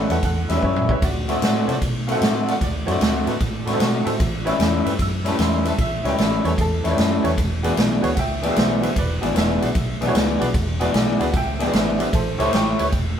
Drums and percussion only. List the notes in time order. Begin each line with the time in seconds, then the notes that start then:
0.10 snare, ride
0.23 kick, snare, ride
0.49 snare, ride
0.63 kick
0.76 mid tom
0.89 kick
1.02 kick, snare, ride
1.29 snare, ride
1.42 snare, ride
1.69 snare, ride
1.82 kick, snare, ride
2.08 snare, ride
2.22 snare, ride
2.48 snare, ride
2.61 kick, snare, ride
2.88 snare, ride
3.01 snare, ride
3.27 snare, ride
3.40 kick, snare, ride
3.67 snare, ride
3.80 snare, ride
4.07 snare, ride
4.20 kick, snare, ride
4.47 snare, ride
4.60 snare, ride
4.86 snare, ride
4.99 kick, snare, ride
5.26 snare, ride
5.39 snare, ride
5.65 snare, ride
5.78 kick, snare, ride
6.05 snare, ride
6.18 snare, ride
6.45 snare, ride
6.58 kick, snare, ride
6.85 snare, ride
6.98 snare, ride
7.25 snare, ride
7.38 kick, snare, ride
7.64 snare, ride
7.77 snare, ride
8.04 snare, ride
8.17 kick, snare, ride
8.43 snare, ride
8.56 snare, ride
8.83 snare, ride
8.96 kick, snare, ride
9.23 snare, ride
9.36 snare, ride
9.62 snare, ride
9.75 kick, snare, ride
10.02 snare, ride
10.15 snare, ride
10.41 snare, ride
10.54 kick, snare, ride
10.81 snare, ride
10.94 snare, ride
11.20 snare, ride
11.34 kick, snare, ride
11.60 snare, ride
11.73 snare, ride
12.00 snare, ride
12.13 kick, snare, ride
12.40 snare, ride
12.53 snare, ride
12.79 snare, ride
12.92 kick, snare, ride